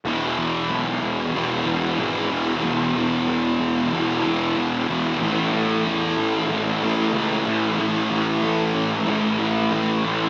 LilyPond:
<<
  \new Staff \with { instrumentName = "Distorted electric guitar" } { \clef bass \time 4/4 \key e \mixolydian \tempo 4 = 93 <e, b, e>2 <e, b, e>8 <b, e>8 <e, b, e>8 <b, e>8 | <e, b, e>2 <e, b, e>8 <b, e>8 <e, b, e>8 <b, e>8 | <a, e a>2 <a, e a>8 <e a>8 <a, e a>8 <e a>8 | <a, e a>2 <a, e a>8 <e a>8 <a, e a>8 <e a>8 | }
  \new Staff \with { instrumentName = "Picked electric bass" } { \clef bass \time 4/4 \key e \mixolydian e,,8 e,8 b,,8 e,,8 e,,8 e,,8 gis,,8 e,,8 | e,,8 e,,8 e,,8 e,,8 e,,8 e,,8 e,,8 e,,8 | a,,8 a,8 e,8 a,,8 a,,8 a,,8 cis,8 a,,8 | a,,8 a,,8 a,,8 a,,8 a,,8 a,,8 a,,8 a,,8 | }
>>